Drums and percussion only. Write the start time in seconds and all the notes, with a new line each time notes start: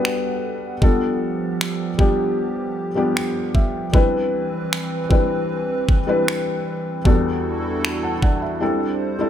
0.05 finger snap
0.82 kick
1.61 finger snap
1.99 kick
3.17 finger snap
3.55 kick
3.94 kick
4.73 finger snap
5.11 kick
5.89 kick
6.28 finger snap
7.05 kick
7.85 finger snap
8.22 kick